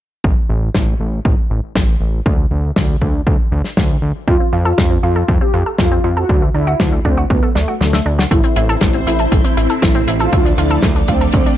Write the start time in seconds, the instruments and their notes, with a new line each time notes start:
0.24 analog synth bass A1, kick
0.49 analog synth bass A1
0.75 analog synth bass A1, kick, snare
1.00 analog synth bass A1
1.25 analog synth bass A1, kick
1.50 analog synth bass A1
1.75 analog synth bass A1, kick, snare
2.01 analog synth bass A1
2.26 analog synth bass D2, kick
2.51 analog synth bass D2
2.76 analog synth bass D2, kick, snare
3.01 analog synth bass D2, kick
3.27 analog synth bass D2, kick
3.52 analog synth bass D2
3.64 snare
3.77 analog synth bass D2, kick, snare
4.02 analog synth bass D2
4.28 analog synth bass F2, synth arpeggio sound A3, analog polysynth F4, kick
4.40 synth arpeggio sound C4
4.53 analog synth bass F2, synth arpeggio sound F4
4.65 analog polysynth F4, synth arpeggio sound A4
4.78 analog synth bass F2, synth arpeggio sound A3, kick, snare
4.91 synth arpeggio sound C4
5.03 analog synth bass F2, analog polysynth F4, synth arpeggio sound F4
5.16 synth arpeggio sound A4
5.28 analog synth bass F2, synth arpeggio sound A3, kick
5.41 synth arpeggio sound C4, analog polysynth G4
5.54 analog synth bass F2, synth arpeggio sound F4
5.66 synth arpeggio sound A4
5.79 analog synth bass F2, synth arpeggio sound A3, analog polysynth F4, kick, snare
5.92 synth arpeggio sound C4
6.04 analog synth bass F2, synth arpeggio sound F4
6.17 analog polysynth F#4, synth arpeggio sound A4
6.29 analog synth bass D2, synth arpeggio sound F#3, kick
6.42 synth arpeggio sound A3
6.55 analog synth bass D2, synth arpeggio sound D4, analog polysynth E4
6.67 synth arpeggio sound F#4
6.80 analog synth bass D2, synth arpeggio sound F#3, kick, snare
6.92 synth arpeggio sound A3
7.05 analog synth bass D2, analog polysynth C4, synth arpeggio sound D4, kick
7.17 synth arpeggio sound F#4
7.30 analog synth bass D2, synth arpeggio sound F#3, analog polysynth B3, kick
7.43 synth arpeggio sound A3
7.55 analog synth bass D2, analog polysynth A3, synth arpeggio sound D4, snare
7.68 synth arpeggio sound F#4
7.81 analog synth bass D2, synth arpeggio sound F#3, analog polysynth A3, snare
7.93 synth arpeggio sound A3, snare
8.06 analog synth bass D2, synth arpeggio sound D4
8.19 synth arpeggio sound F#4, snare
8.31 analog synth bass A1, string machine A3 C4 E4 C5, synth arpeggio sound A3, analog polysynth E4, kick, closed hi-hat
8.43 synth arpeggio sound C4, closed hi-hat
8.56 analog synth bass A1, synth arpeggio sound E4, closed hi-hat
8.69 analog polysynth E4, synth arpeggio sound A4, closed hi-hat
8.81 analog synth bass A1, synth arpeggio sound A3, kick, snare, closed hi-hat
8.93 synth arpeggio sound C4, closed hi-hat
9.07 analog synth bass A1, analog polysynth E4, synth arpeggio sound E4, closed hi-hat
9.19 synth arpeggio sound A4, closed hi-hat
9.32 analog synth bass A1, synth arpeggio sound A3, kick, closed hi-hat
9.44 synth arpeggio sound C4, analog polysynth E4, closed hi-hat
9.57 analog synth bass A1, synth arpeggio sound E4, closed hi-hat
9.69 synth arpeggio sound A4, closed hi-hat
9.82 analog synth bass A1, synth arpeggio sound A3, analog polysynth E4, kick, snare, closed hi-hat
9.94 synth arpeggio sound C4, closed hi-hat
10.07 analog synth bass A1, synth arpeggio sound E4, closed hi-hat
10.20 analog polysynth F4, synth arpeggio sound A4, closed hi-hat
10.33 analog synth bass D2, string machine F3 D4 D5, synth arpeggio sound A3, kick, closed hi-hat
10.45 synth arpeggio sound D4, closed hi-hat
10.58 analog synth bass D2, analog polysynth E4, synth arpeggio sound F4, closed hi-hat
10.70 synth arpeggio sound A4, closed hi-hat
10.83 analog synth bass D2, synth arpeggio sound A3, kick, snare, closed hi-hat
10.96 synth arpeggio sound D4, closed hi-hat
11.08 analog synth bass D2, analog polysynth C4, synth arpeggio sound F4, kick, closed hi-hat
11.21 synth arpeggio sound A4, closed hi-hat
11.32 analog synth bass D2, synth arpeggio sound A3, analog polysynth C4, kick, closed hi-hat
11.46 synth arpeggio sound D4, closed hi-hat